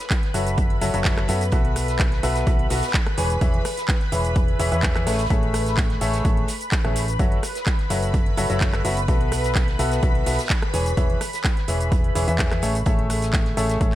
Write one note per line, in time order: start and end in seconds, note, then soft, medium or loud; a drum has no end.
0.00 7.18 B4 medium
0.00 7.18 B5 medium
0.00 snare medium
0.00 cabasa soft
0.10 kick loud
0.10 snare loud
0.10 clap loud
0.10 closed hi-hat medium
0.10 cabasa soft
0.23 snare soft
0.23 closed hi-hat soft
0.34 0.79 F#1 medium
0.34 0.79 F#3 medium
0.34 0.79 F#4 medium
0.34 0.79 A4 medium
0.34 0.79 C#5 medium
0.34 0.79 E5 medium
0.34 closed hi-hat medium
0.34 open hi-hat loud
0.34 cabasa medium
0.47 closed hi-hat medium
0.47 cabasa soft
0.58 kick loud
0.58 closed hi-hat medium
0.58 cabasa soft
0.70 closed hi-hat soft
0.81 0.91 F#1 loud
0.81 0.92 F#3 loud
0.81 0.92 F#4 medium
0.81 0.92 A4 medium
0.81 0.92 C#5 medium
0.81 0.92 E5 loud
0.81 closed hi-hat medium
0.81 open hi-hat loud
0.81 cabasa medium
0.94 1.27 F#1 medium
0.94 1.26 F#3 medium
0.94 1.26 F#4 medium
0.94 1.26 A4 medium
0.94 1.26 C#5 medium
0.94 1.26 E5 loud
0.94 closed hi-hat medium
0.94 cabasa soft
1.05 kick loud
1.05 snare loud
1.05 clap loud
1.05 closed hi-hat medium
1.05 closed hi-hat loud
1.05 cabasa soft
1.17 cross-stick medium
1.17 snare soft
1.17 clap soft
1.17 closed hi-hat soft
1.28 1.50 F#2 loud
1.28 1.41 B3 medium
1.28 1.41 F#4 medium
1.28 1.41 A4 medium
1.28 1.41 C#5 medium
1.28 1.41 E5 loud
1.28 closed hi-hat medium
1.28 open hi-hat loud
1.28 cabasa medium
1.41 closed hi-hat medium
1.41 cabasa soft
1.52 2.21 B1 medium
1.52 2.21 B3 medium
1.52 2.21 F#4 medium
1.52 2.21 A4 medium
1.52 2.21 B4 medium
1.52 2.21 E5 loud
1.52 kick loud
1.52 closed hi-hat medium
1.52 cabasa soft
1.65 closed hi-hat soft
1.76 cross-stick medium
1.76 closed hi-hat medium
1.76 open hi-hat loud
1.76 cabasa medium
1.88 snare soft
1.88 closed hi-hat medium
1.88 cabasa soft
1.99 kick loud
1.99 snare loud
1.99 clap loud
1.99 closed hi-hat medium
1.99 cabasa soft
2.12 snare medium
2.12 closed hi-hat soft
2.23 2.45 B1 medium
2.23 2.44 B3 loud
2.23 2.44 F#4 medium
2.23 2.44 A4 medium
2.23 2.44 B4 medium
2.23 2.44 E5 loud
2.23 closed hi-hat medium
2.23 open hi-hat loud
2.23 cabasa medium
2.36 snare medium
2.36 closed hi-hat medium
2.36 cabasa soft
2.47 2.68 B1 loud
2.47 2.68 B3 medium
2.47 2.68 F#4 medium
2.47 2.68 A4 medium
2.47 2.68 B4 medium
2.47 2.68 E5 medium
2.47 kick loud
2.47 closed hi-hat medium
2.47 cabasa soft
2.59 closed hi-hat soft
2.70 2.80 B1 loud
2.70 2.83 B3 medium
2.70 2.83 F#4 medium
2.70 2.83 A4 medium
2.70 2.83 B4 medium
2.70 2.83 E5 medium
2.70 snare medium
2.70 closed hi-hat medium
2.70 open hi-hat loud
2.70 cabasa medium
2.76 snare medium
2.76 closed hi-hat medium
2.82 snare medium
2.82 closed hi-hat medium
2.82 cabasa soft
2.88 snare medium
2.88 closed hi-hat medium
2.94 kick loud
2.94 snare loud
2.94 clap loud
2.94 closed hi-hat medium
2.94 cabasa soft
3.06 cross-stick medium
3.06 closed hi-hat soft
3.17 3.39 E1 loud
3.17 3.37 E3 medium
3.17 3.37 G#4 medium
3.17 3.37 B4 medium
3.17 3.37 C#5 medium
3.17 3.37 G#5 loud
3.17 closed hi-hat medium
3.17 open hi-hat loud
3.17 cabasa medium
3.30 closed hi-hat medium
3.30 cabasa soft
3.41 3.61 E3 medium
3.41 3.61 G#4 medium
3.41 3.61 B4 medium
3.41 3.61 C#5 medium
3.41 3.61 E5 loud
3.41 kick loud
3.41 closed hi-hat medium
3.41 cabasa soft
3.54 closed hi-hat soft
3.65 cross-stick medium
3.65 closed hi-hat medium
3.65 open hi-hat loud
3.65 cabasa medium
3.77 snare medium
3.77 closed hi-hat medium
3.77 cabasa soft
3.88 kick loud
3.88 snare loud
3.88 clap loud
3.88 closed hi-hat medium
3.88 cabasa soft
4.01 snare soft
4.01 closed hi-hat soft
4.12 4.57 E1 loud
4.12 4.57 E3 medium
4.12 4.57 G#4 medium
4.12 4.57 B4 medium
4.12 4.57 C#5 medium
4.12 4.57 E5 medium
4.12 closed hi-hat medium
4.12 open hi-hat loud
4.12 cabasa medium
4.25 closed hi-hat medium
4.25 cabasa soft
4.36 kick loud
4.36 closed hi-hat medium
4.36 cabasa soft
4.48 closed hi-hat soft
4.59 4.69 E1 loud
4.59 4.70 E3 loud
4.59 4.70 G#4 medium
4.59 4.70 B4 medium
4.59 4.70 C#5 medium
4.59 4.70 E5 loud
4.59 closed hi-hat medium
4.59 open hi-hat loud
4.59 cabasa medium
4.72 5.05 E2 loud
4.72 5.04 E3 loud
4.72 5.04 G#4 medium
4.72 5.04 B4 medium
4.72 5.04 C#5 medium
4.72 5.04 E5 loud
4.72 closed hi-hat medium
4.72 cabasa soft
4.83 kick loud
4.83 snare loud
4.83 clap loud
4.83 closed hi-hat medium
4.83 cabasa soft
4.95 cross-stick medium
4.95 snare soft
4.95 clap soft
4.95 closed hi-hat soft
5.06 5.28 A1 loud
5.06 5.19 A3 medium
5.06 5.19 G#4 medium
5.06 5.19 A4 medium
5.06 5.19 C#5 medium
5.06 5.19 E5 loud
5.06 snare medium
5.06 closed hi-hat medium
5.06 open hi-hat loud
5.06 cabasa medium
5.12 snare medium
5.12 closed hi-hat medium
5.18 snare medium
5.18 closed hi-hat medium
5.18 cabasa soft
5.25 snare medium
5.25 closed hi-hat medium
5.30 5.99 A1 medium
5.30 5.99 A3 medium
5.30 5.99 G#4 medium
5.30 5.99 A4 medium
5.30 5.99 C#5 medium
5.30 5.99 E5 medium
5.30 kick loud
5.30 closed hi-hat medium
5.30 cabasa soft
5.43 closed hi-hat soft
5.54 cross-stick medium
5.54 closed hi-hat medium
5.54 open hi-hat loud
5.54 cabasa medium
5.66 snare soft
5.66 closed hi-hat soft
5.66 cabasa soft
5.77 kick loud
5.77 snare loud
5.77 clap loud
5.77 closed hi-hat medium
5.77 cabasa soft
5.90 snare medium
5.90 closed hi-hat soft
6.01 6.23 A1 medium
6.01 6.22 A3 loud
6.01 6.22 G#4 medium
6.01 6.22 A4 medium
6.01 6.22 C#5 medium
6.01 6.22 E5 loud
6.01 closed hi-hat medium
6.01 open hi-hat loud
6.01 cabasa medium
6.13 snare medium
6.13 closed hi-hat medium
6.13 cabasa soft
6.25 6.44 A1 loud
6.25 6.46 A3 medium
6.25 6.46 G#4 medium
6.25 6.46 A4 medium
6.25 6.46 C#5 medium
6.25 6.46 E5 medium
6.25 kick loud
6.25 closed hi-hat soft
6.25 closed hi-hat medium
6.25 cabasa soft
6.37 closed hi-hat soft
6.48 snare medium
6.48 closed hi-hat medium
6.48 open hi-hat loud
6.48 cabasa medium
6.61 closed hi-hat soft
6.61 cabasa soft
6.72 kick loud
6.72 snare loud
6.72 clap loud
6.72 closed hi-hat loud
6.72 closed hi-hat medium
6.72 cabasa soft
6.84 7.17 A1 loud
6.84 7.03 A3 medium
6.84 7.03 G#4 medium
6.84 7.03 A4 medium
6.84 7.03 C#5 medium
6.84 7.03 E5 medium
6.84 cross-stick medium
6.84 closed hi-hat soft
6.96 closed hi-hat medium
6.96 open hi-hat loud
6.96 cabasa medium
7.08 closed hi-hat medium
7.08 cabasa soft
7.19 7.39 F#3 medium
7.19 7.39 F#4 medium
7.19 7.39 A4 medium
7.19 13.95 B4 medium
7.19 7.39 C#5 medium
7.19 7.39 E5 medium
7.19 13.95 B5 loud
7.19 kick loud
7.19 closed hi-hat medium
7.19 cabasa soft
7.32 closed hi-hat soft
7.43 cross-stick medium
7.43 closed hi-hat medium
7.43 open hi-hat loud
7.43 cabasa medium
7.55 snare medium
7.55 closed hi-hat soft
7.55 cabasa soft
7.66 kick loud
7.66 snare loud
7.66 clap loud
7.66 closed hi-hat medium
7.66 cabasa soft
7.79 snare soft
7.79 closed hi-hat soft
7.90 8.35 F#1 loud
7.90 8.35 F#3 medium
7.90 8.35 F#4 medium
7.90 8.35 A4 medium
7.90 8.35 C#5 medium
7.90 8.35 E5 medium
7.90 closed hi-hat medium
7.90 open hi-hat loud
7.90 cabasa medium
8.03 closed hi-hat medium
8.03 cabasa soft
8.14 kick loud
8.14 closed hi-hat medium
8.14 cabasa soft
8.26 closed hi-hat soft
8.37 8.47 F#1 loud
8.37 8.48 F#3 loud
8.37 8.48 F#4 medium
8.37 8.48 A4 medium
8.37 8.48 C#5 medium
8.37 8.48 E5 loud
8.37 closed hi-hat medium
8.37 open hi-hat loud
8.37 cabasa medium
8.50 8.82 F#1 loud
8.50 8.82 F#3 loud
8.50 8.82 F#4 medium
8.50 8.82 A4 medium
8.50 8.82 C#5 medium
8.50 8.82 E5 loud
8.50 closed hi-hat soft
8.50 cabasa soft
8.61 kick loud
8.61 snare loud
8.61 clap loud
8.61 closed hi-hat medium
8.61 cabasa soft
8.73 cross-stick medium
8.73 snare soft
8.73 clap soft
8.73 closed hi-hat soft
8.85 9.06 F#1 loud
8.85 8.97 B3 medium
8.85 8.97 F#4 medium
8.85 8.97 A4 medium
8.85 8.97 C#5 medium
8.85 8.97 E5 loud
8.85 closed hi-hat medium
8.85 open hi-hat loud
8.85 cabasa medium
8.97 closed hi-hat medium
8.97 cabasa soft
9.08 9.77 B1 loud
9.08 9.76 B3 medium
9.08 9.76 F#4 medium
9.08 9.76 A4 medium
9.08 9.76 B4 medium
9.08 9.76 E5 medium
9.08 kick loud
9.08 closed hi-hat medium
9.08 cabasa soft
9.21 closed hi-hat soft
9.32 cross-stick medium
9.32 closed hi-hat medium
9.32 open hi-hat loud
9.32 cabasa medium
9.44 snare soft
9.44 closed hi-hat medium
9.44 cabasa soft
9.55 kick loud
9.55 snare loud
9.55 clap loud
9.55 closed hi-hat medium
9.55 cabasa soft
9.68 snare medium
9.68 closed hi-hat soft
9.79 10.01 B1 loud
9.79 10.00 B3 loud
9.79 10.00 F#4 medium
9.79 10.00 A4 loud
9.79 10.00 B4 medium
9.79 10.00 E5 loud
9.79 closed hi-hat medium
9.79 open hi-hat loud
9.79 cabasa medium
9.91 snare medium
9.91 closed hi-hat soft
9.91 cabasa soft
10.03 10.24 B1 loud
10.03 10.24 B3 medium
10.03 10.24 F#4 medium
10.03 10.24 A4 medium
10.03 10.24 B4 medium
10.03 10.24 E5 medium
10.03 kick loud
10.03 closed hi-hat medium
10.03 cabasa soft
10.15 closed hi-hat soft
10.26 10.36 B1 loud
10.26 10.39 B3 medium
10.26 10.39 F#4 medium
10.26 10.39 A4 medium
10.26 10.39 B4 medium
10.26 10.39 E5 medium
10.26 snare loud
10.26 closed hi-hat medium
10.26 open hi-hat loud
10.26 cabasa medium
10.33 snare medium
10.33 closed hi-hat medium
10.39 snare medium
10.39 closed hi-hat medium
10.39 cabasa soft
10.45 snare medium
10.45 closed hi-hat medium
10.50 kick loud
10.50 snare loud
10.50 clap loud
10.50 closed hi-hat medium
10.50 cabasa soft
10.62 cross-stick medium
10.62 closed hi-hat soft
10.74 10.95 E1 loud
10.74 10.93 E3 medium
10.74 10.93 G#4 medium
10.74 10.93 B4 medium
10.74 10.93 C#5 medium
10.74 10.93 G#5 loud
10.74 closed hi-hat medium
10.74 open hi-hat loud
10.74 cabasa medium
10.86 closed hi-hat medium
10.86 cabasa soft
10.97 11.14 E1 loud
10.97 11.16 E3 medium
10.97 11.16 G#4 medium
10.97 11.16 B4 medium
10.97 11.16 C#5 medium
10.97 11.16 E5 medium
10.97 kick loud
10.97 closed hi-hat medium
10.97 closed hi-hat loud
10.97 cabasa soft
11.10 closed hi-hat soft
11.21 cross-stick medium
11.21 closed hi-hat medium
11.21 open hi-hat loud
11.21 cabasa medium
11.33 snare medium
11.33 closed hi-hat medium
11.33 cabasa soft
11.43 kick loud
11.43 snare loud
11.43 clap loud
11.43 closed hi-hat medium
11.43 cabasa soft
11.57 snare soft
11.57 closed hi-hat soft
11.68 12.13 E1 loud
11.68 12.13 E3 medium
11.68 12.13 G#4 medium
11.68 12.13 B4 medium
11.68 12.13 C#5 medium
11.68 12.13 E5 medium
11.68 closed hi-hat medium
11.68 open hi-hat loud
11.68 cabasa medium
11.81 closed hi-hat medium
11.81 cabasa soft
11.92 kick loud
11.92 closed hi-hat medium
11.92 cabasa soft
12.04 closed hi-hat soft
12.15 12.25 E1 loud
12.15 12.26 E3 loud
12.15 12.26 G#4 medium
12.15 12.26 B4 medium
12.15 12.26 C#5 medium
12.15 12.26 E5 loud
12.15 closed hi-hat medium
12.15 open hi-hat loud
12.15 cabasa medium
12.28 12.60 E2 loud
12.28 12.60 E3 loud
12.28 12.60 G#4 medium
12.28 12.60 B4 medium
12.28 12.60 C#5 medium
12.28 12.60 E5 loud
12.28 closed hi-hat medium
12.28 cabasa soft
12.38 kick loud
12.38 snare loud
12.38 clap loud
12.38 closed hi-hat medium
12.38 cabasa soft
12.51 cross-stick medium
12.51 snare soft
12.51 clap soft
12.51 closed hi-hat soft
12.62 12.84 A1 loud
12.62 12.75 A3 medium
12.62 12.75 G#4 medium
12.62 12.75 A4 medium
12.62 12.75 C#5 medium
12.62 12.75 E5 loud
12.62 closed hi-hat medium
12.62 open hi-hat loud
12.62 cabasa medium
12.75 closed hi-hat medium
12.75 cabasa medium
12.86 13.54 A3 medium
12.86 13.54 G#4 medium
12.86 13.54 A4 medium
12.86 13.54 C#5 medium
12.86 13.54 E5 loud
12.86 kick loud
12.86 closed hi-hat medium
12.86 cabasa soft
12.99 closed hi-hat soft
13.10 cross-stick medium
13.10 closed hi-hat medium
13.10 open hi-hat loud
13.10 cabasa medium
13.22 snare medium
13.22 closed hi-hat medium
13.22 cabasa soft
13.33 kick loud
13.33 snare loud
13.33 clap loud
13.33 closed hi-hat medium
13.33 cabasa soft
13.46 snare medium
13.46 closed hi-hat soft
13.57 13.78 A1 loud
13.57 13.78 A3 loud
13.57 13.78 G#4 medium
13.57 13.78 A4 medium
13.57 13.78 C#5 medium
13.57 13.78 E5 loud
13.57 closed hi-hat medium
13.57 open hi-hat loud
13.57 cabasa medium
13.69 snare medium
13.69 closed hi-hat medium
13.69 cabasa soft
13.81 13.95 A1 medium
13.81 13.95 G#4 medium
13.81 13.95 A4 medium
13.81 13.95 C#5 medium
13.81 13.95 E5 medium
13.81 kick loud
13.81 closed hi-hat medium
13.81 cabasa soft